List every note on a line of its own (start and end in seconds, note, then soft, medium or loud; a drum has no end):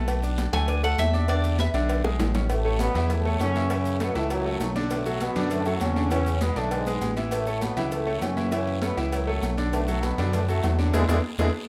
0.00 0.48 B1 loud
0.00 0.18 A3 medium
0.00 0.18 A4 medium
0.00 0.18 A5 medium
0.08 cowbell loud
0.08 high conga soft
0.08 low agogo loud
0.08 long guiro medium
0.08 maracas medium
0.23 0.48 D4 medium
0.23 0.48 D5 medium
0.23 0.48 D6 medium
0.23 high conga soft
0.23 maracas medium
0.38 cowbell medium
0.38 high conga loud
0.38 low agogo medium
0.38 short guiro medium
0.38 maracas medium
0.53 0.95 D2 medium
0.53 0.65 A3 medium
0.53 0.66 A4 medium
0.53 0.81 G#5 loud
0.53 0.66 A5 medium
0.53 cowbell medium
0.53 high conga soft
0.53 low conga medium
0.53 low agogo loud
0.53 short guiro medium
0.53 maracas soft
0.68 0.81 D4 medium
0.68 0.81 D5 medium
0.68 0.81 D6 medium
0.68 cowbell loud
0.68 high conga soft
0.68 long guiro medium
0.68 maracas medium
0.83 1.08 A3 medium
0.83 1.08 A4 medium
0.83 0.98 F#5 medium
0.83 1.08 A5 medium
0.83 high conga soft
0.83 low agogo medium
0.83 maracas medium
0.98 1.68 E2 medium
0.98 1.27 E5 loud
0.98 cowbell medium
0.98 high conga medium
0.98 low timbale medium
0.98 low agogo loud
0.98 short guiro medium
0.98 maracas medium
1.14 1.26 D4 medium
1.14 1.26 D5 medium
1.14 1.26 D6 medium
1.14 high conga medium
1.14 short guiro medium
1.14 maracas soft
1.28 1.53 D3 medium
1.28 1.54 D4 medium
1.28 1.54 D5 medium
1.28 1.57 D5 medium
1.28 cowbell loud
1.28 high conga soft
1.28 low agogo loud
1.28 long guiro medium
1.28 maracas medium
1.44 high conga soft
1.44 low agogo medium
1.44 maracas medium
1.59 1.71 B3 medium
1.59 1.72 B4 medium
1.59 1.69 E5 medium
1.59 1.72 B5 medium
1.59 cowbell medium
1.59 high conga loud
1.59 short guiro medium
1.59 maracas medium
1.74 2.02 B1 loud
1.74 1.99 D3 loud
1.74 1.99 D4 medium
1.74 1.99 D5 loud
1.74 cowbell medium
1.74 high conga soft
1.74 low agogo medium
1.74 short guiro medium
1.74 maracas soft
1.89 cowbell loud
1.89 high conga soft
1.89 low agogo loud
1.89 long guiro medium
1.89 maracas medium
2.04 2.18 B1 medium
2.04 2.29 G#3 medium
2.04 2.29 G#4 medium
2.04 2.29 G#5 medium
2.04 high bongo medium
2.04 high timbale medium
2.19 2.89 A1 loud
2.19 cowbell medium
2.19 low bongo medium
2.19 high conga medium
2.19 low timbale medium
2.19 low agogo medium
2.19 short guiro medium
2.19 maracas medium
2.35 2.47 C#4 medium
2.35 2.47 C#5 medium
2.35 2.47 C#6 medium
2.35 cowbell medium
2.35 low bongo loud
2.35 high conga medium
2.35 low timbale medium
2.35 short guiro medium
2.35 maracas soft
2.50 2.78 A2 medium
2.50 2.78 A3 loud
2.50 cowbell loud
2.50 low agogo loud
2.50 long guiro medium
2.50 maracas medium
2.64 2.90 A3 medium
2.64 2.90 A4 medium
2.64 2.90 C#5 medium
2.64 high conga soft
2.79 3.08 B2 medium
2.79 3.08 B3 loud
2.79 cowbell medium
2.79 high conga loud
2.79 low agogo medium
2.79 short guiro medium
2.79 maracas medium
2.94 3.37 E2 loud
2.94 3.20 E3 loud
2.94 3.20 E4 loud
2.94 3.20 E5 medium
2.94 cowbell medium
2.94 high conga soft
2.94 low conga medium
2.94 low agogo loud
2.94 short guiro medium
2.94 maracas soft
3.09 3.41 A2 medium
3.09 3.40 A3 loud
3.09 cowbell loud
3.09 high conga soft
3.09 low conga medium
3.09 long guiro medium
3.09 maracas medium
3.25 3.50 A3 medium
3.25 3.50 A4 medium
3.25 3.50 C#5 medium
3.25 high conga soft
3.25 low agogo medium
3.40 4.10 F#2 loud
3.40 3.69 C#3 medium
3.40 3.68 C#4 loud
3.40 cowbell medium
3.40 high conga medium
3.40 low timbale medium
3.40 low agogo loud
3.40 short guiro medium
3.40 maracas medium
3.55 3.68 E3 medium
3.55 3.68 E4 medium
3.55 3.68 E5 medium
3.55 high conga medium
3.55 short guiro medium
3.55 maracas soft
3.70 3.99 C#3 medium
3.70 3.95 E3 medium
3.70 3.98 C#4 loud
3.70 3.95 E4 medium
3.70 3.96 E5 medium
3.70 cowbell loud
3.70 high conga soft
3.70 low agogo loud
3.70 long guiro medium
3.70 maracas medium
3.85 high conga soft
3.85 low agogo medium
3.85 maracas medium
4.00 4.16 B2 medium
4.00 4.13 A3 medium
4.00 4.15 B3 loud
4.00 4.13 A4 medium
4.00 4.13 C#5 medium
4.00 cowbell medium
4.00 high conga loud
4.00 short guiro medium
4.00 maracas medium
4.15 4.57 C#2 medium
4.15 4.31 A2 medium
4.15 4.40 E3 medium
4.15 4.30 A3 loud
4.15 4.40 E4 loud
4.15 4.40 E5 medium
4.15 cowbell medium
4.15 high conga soft
4.15 low agogo medium
4.15 short guiro medium
4.15 maracas soft
4.30 4.73 F#2 medium
4.30 4.72 F#3 loud
4.30 cowbell loud
4.30 high conga soft
4.30 low agogo loud
4.30 long guiro medium
4.30 maracas medium
4.45 4.70 A3 medium
4.45 4.70 A4 medium
4.45 4.70 C#5 medium
4.45 high conga soft
4.60 5.30 B1 medium
4.60 cowbell medium
4.60 high conga medium
4.60 low timbale medium
4.60 low agogo medium
4.60 short guiro medium
4.60 maracas medium
4.75 5.00 D3 medium
4.75 5.00 D4 loud
4.75 5.01 D5 loud
4.75 cowbell medium
4.75 high conga medium
4.75 short guiro medium
4.75 maracas soft
4.90 5.19 A2 medium
4.90 5.19 A3 loud
4.90 cowbell loud
4.90 high conga soft
4.90 low agogo medium
4.90 long guiro medium
4.90 maracas medium
5.06 5.31 F#3 medium
5.06 5.31 F#4 medium
5.06 5.31 A4 medium
5.06 high conga soft
5.06 maracas medium
5.20 5.49 B2 medium
5.20 5.48 B3 loud
5.20 cowbell medium
5.20 high conga loud
5.20 low agogo medium
5.20 short guiro medium
5.20 maracas medium
5.35 5.78 F#2 loud
5.35 5.60 D3 loud
5.35 5.61 D4 loud
5.35 5.61 D5 loud
5.35 cowbell medium
5.35 high conga soft
5.35 low conga medium
5.35 low agogo loud
5.35 short guiro medium
5.35 maracas soft
5.50 5.79 A2 medium
5.50 5.78 A3 loud
5.50 cowbell loud
5.50 high conga soft
5.50 long guiro medium
5.50 maracas medium
5.65 5.91 F#3 medium
5.65 5.91 F#4 medium
5.65 5.91 A4 medium
5.65 high conga soft
5.65 low agogo medium
5.65 maracas medium
5.80 6.51 E2 medium
5.80 6.11 C#3 medium
5.80 6.09 C#4 loud
5.80 cowbell medium
5.80 high conga medium
5.80 low agogo loud
5.80 short guiro medium
5.80 maracas medium
5.96 6.08 D3 medium
5.96 6.08 D4 medium
5.96 6.09 D5 medium
5.96 high conga medium
5.96 short guiro medium
5.96 maracas soft
6.10 6.40 C#3 medium
6.10 6.36 E3 medium
6.10 6.39 C#4 loud
6.10 6.36 E4 medium
6.10 6.36 E5 medium
6.10 cowbell loud
6.10 high conga soft
6.10 low agogo loud
6.10 long guiro medium
6.10 maracas medium
6.26 high conga soft
6.26 low agogo medium
6.26 maracas medium
6.41 6.57 B2 medium
6.41 6.54 G#3 medium
6.41 6.56 B3 loud
6.41 6.54 G#4 medium
6.41 6.54 B4 medium
6.41 cowbell medium
6.41 high conga loud
6.41 short guiro medium
6.41 maracas medium
6.56 6.98 B1 loud
6.56 6.72 A2 medium
6.56 6.81 D3 medium
6.56 6.71 A3 loud
6.56 6.81 D4 medium
6.56 6.81 D5 medium
6.56 cowbell medium
6.56 high conga soft
6.56 low agogo medium
6.56 short guiro medium
6.56 maracas soft
6.71 7.14 G#2 medium
6.71 7.14 G#3 medium
6.71 cowbell loud
6.71 high conga soft
6.71 low agogo loud
6.71 long guiro medium
6.71 maracas medium
6.86 7.11 G#3 medium
6.86 7.12 G#4 medium
6.86 7.12 B4 medium
6.86 high conga soft
6.86 maracas medium
7.01 7.71 A1 medium
7.01 cowbell medium
7.01 high conga medium
7.01 low agogo medium
7.01 short guiro medium
7.01 maracas medium
7.16 7.41 E3 medium
7.16 7.42 E4 medium
7.16 7.42 E5 medium
7.16 cowbell medium
7.16 high conga medium
7.16 short guiro medium
7.16 maracas soft
7.31 7.60 A2 medium
7.31 7.59 A3 loud
7.31 cowbell loud
7.31 high conga soft
7.31 low agogo loud
7.31 long guiro medium
7.31 maracas medium
7.47 7.71 A3 medium
7.47 7.72 A4 medium
7.47 7.72 C#5 medium
7.47 high conga soft
7.47 maracas medium
7.61 7.92 B2 medium
7.61 7.92 B3 loud
7.61 cowbell medium
7.61 high conga loud
7.61 low agogo medium
7.61 short guiro medium
7.61 maracas medium
7.76 8.19 C#2 medium
7.76 8.01 E3 medium
7.76 8.02 E4 medium
7.76 8.02 E5 loud
7.76 cowbell medium
7.76 high conga soft
7.76 low conga medium
7.76 low agogo loud
7.76 short guiro medium
7.76 maracas soft
7.91 8.20 A2 medium
7.91 8.20 A3 loud
7.91 cowbell loud
7.91 high conga soft
7.91 long guiro medium
7.91 maracas medium
8.07 8.32 A3 medium
8.07 8.32 A4 medium
8.07 8.32 C#5 medium
8.07 high conga soft
8.07 low agogo medium
8.21 8.92 F#2 medium
8.21 8.52 C#3 medium
8.21 8.51 C#4 loud
8.21 cowbell medium
8.21 high conga medium
8.21 low timbale medium
8.21 low agogo loud
8.21 short guiro medium
8.21 maracas medium
8.37 8.49 E3 medium
8.37 8.50 E4 medium
8.37 8.50 E5 medium
8.37 high conga medium
8.37 short guiro medium
8.37 maracas soft
8.51 8.81 C#3 medium
8.51 8.77 E3 medium
8.51 8.80 C#4 loud
8.51 8.77 E4 medium
8.51 8.77 E5 medium
8.51 cowbell loud
8.51 high conga soft
8.51 low agogo loud
8.51 long guiro medium
8.51 maracas medium
8.67 high conga soft
8.67 low agogo medium
8.82 8.98 B2 medium
8.82 8.95 A3 medium
8.82 8.97 B3 loud
8.82 8.95 A4 medium
8.82 8.95 C#5 medium
8.82 cowbell medium
8.82 high conga loud
8.82 short guiro medium
8.82 maracas medium
8.97 9.39 C#2 medium
8.97 9.22 E3 medium
8.97 9.22 E4 loud
8.97 9.22 E5 medium
8.97 cowbell medium
8.97 high conga soft
8.97 low agogo medium
8.97 short guiro medium
8.97 maracas soft
9.12 9.56 F#2 medium
9.12 9.55 F#3 medium
9.12 cowbell loud
9.12 high conga soft
9.12 low agogo loud
9.12 long guiro medium
9.12 maracas medium
9.27 9.52 A3 medium
9.27 9.52 A4 medium
9.27 9.53 C#5 medium
9.27 high conga soft
9.42 10.12 B1 loud
9.42 cowbell medium
9.42 high conga medium
9.42 low agogo medium
9.42 short guiro medium
9.42 maracas medium
9.57 9.82 D3 medium
9.57 9.82 D4 medium
9.57 9.83 D5 medium
9.57 cowbell medium
9.57 high conga medium
9.57 short guiro medium
9.57 maracas soft
9.73 10.02 A2 medium
9.73 10.01 A3 loud
9.73 cowbell loud
9.73 high conga soft
9.73 low agogo loud
9.73 long guiro medium
9.73 maracas medium
9.88 10.13 F#3 medium
9.88 10.13 F#4 medium
9.88 10.13 A4 medium
9.88 high conga soft
9.88 maracas medium
10.03 10.34 B2 medium
10.03 10.33 B3 loud
10.03 cowbell medium
10.03 high conga loud
10.03 low agogo medium
10.03 short guiro medium
10.03 maracas medium
10.18 10.60 F#2 loud
10.18 10.43 D3 medium
10.18 10.43 D4 loud
10.18 10.44 D5 medium
10.18 cowbell medium
10.18 high conga soft
10.18 low conga medium
10.18 low agogo loud
10.18 short guiro medium
10.18 maracas soft
10.33 10.41 A2 medium
10.33 10.40 A3 medium
10.33 cowbell loud
10.33 high conga soft
10.33 low conga medium
10.33 long guiro medium
10.33 maracas medium
10.48 10.77 A2 medium
10.48 10.73 F#3 medium
10.48 10.76 A3 medium
10.48 10.73 F#4 medium
10.48 10.74 A4 medium
10.48 high conga soft
10.48 low agogo medium
10.48 maracas medium
10.63 10.92 E2 loud
10.63 cowbell medium
10.63 high conga medium
10.63 low timbale medium
10.63 low agogo loud
10.63 short guiro medium
10.63 maracas medium
10.78 10.94 F#2 medium
10.78 10.91 D3 medium
10.78 10.94 F#3 medium
10.78 10.91 D4 medium
10.78 10.91 D5 medium
10.78 high conga medium
10.78 short guiro medium
10.78 maracas soft
10.93 11.05 E2 loud
10.93 11.01 D3 loud
10.93 11.01 E3 loud
10.93 11.01 G#3 loud
10.93 11.03 D4 loud
10.93 11.03 E4 loud
10.93 11.03 G#4 loud
10.93 cowbell loud
10.93 high conga loud
10.93 high timbale loud
10.93 long guiro loud
10.93 maracas loud
11.08 11.20 E2 loud
11.08 11.16 D3 loud
11.08 11.16 E3 loud
11.08 11.16 G#3 medium
11.08 11.18 D4 loud
11.08 11.18 E4 loud
11.08 11.18 G#4 loud
11.08 cowbell loud
11.08 high conga loud
11.08 high timbale loud
11.08 long guiro loud
11.08 maracas loud
11.38 11.50 E2 medium
11.38 11.47 D3 loud
11.38 11.47 E3 loud
11.38 11.47 G#3 loud
11.38 11.49 D4 medium
11.38 11.49 E4 loud
11.38 11.49 G#4 loud
11.38 cowbell medium
11.38 high conga loud
11.38 high timbale loud
11.38 long guiro loud
11.38 maracas loud